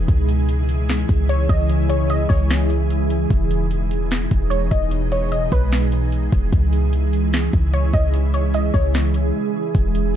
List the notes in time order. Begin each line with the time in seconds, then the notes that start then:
Already playing: E3 G#3 G#4
0.08 C#2 C#3 E4, kick, closed hi-hat
0.29 closed hi-hat
0.49 closed hi-hat
0.69 closed hi-hat
0.89 snare, closed hi-hat
1.09 C#2, kick, closed hi-hat
1.29 C#5, closed hi-hat
1.49 C#2 D#5, kick, closed hi-hat
1.69 closed hi-hat
1.89 C#5, closed hi-hat
2.10 D#5, closed hi-hat
2.29 C#2 C#5, kick, open hi-hat
2.50 snare, closed hi-hat
2.70 closed hi-hat
2.90 closed hi-hat
3.10 closed hi-hat
3.30 E1 B2 G#3 D#4, kick, closed hi-hat
3.51 closed hi-hat
3.71 closed hi-hat
3.91 closed hi-hat
4.11 snare, closed hi-hat
4.31 E1, kick, closed hi-hat
4.50 C#5, closed hi-hat
4.71 E1 D#5, kick, closed hi-hat
4.91 closed hi-hat
5.12 C#5, closed hi-hat
5.32 D#5, closed hi-hat
5.52 B1 B4, kick, closed hi-hat
5.72 snare, closed hi-hat
5.92 closed hi-hat
6.12 closed hi-hat
6.32 E1, kick, closed hi-hat
6.53 C#2 C#3 E3 E4 G#4, kick, closed hi-hat
6.73 closed hi-hat
6.93 closed hi-hat
7.13 closed hi-hat
7.33 snare, closed hi-hat
7.53 C#2, kick, closed hi-hat
7.73 C#5, closed hi-hat
7.93 C#2 D#5, kick, closed hi-hat
8.14 closed hi-hat
8.34 C#5, closed hi-hat
8.54 D#5, closed hi-hat
8.74 C#2 C#5, kick, open hi-hat
8.94 snare, closed hi-hat
9.14 closed hi-hat
9.75 E1 B2 D#4, kick, closed hi-hat
9.95 closed hi-hat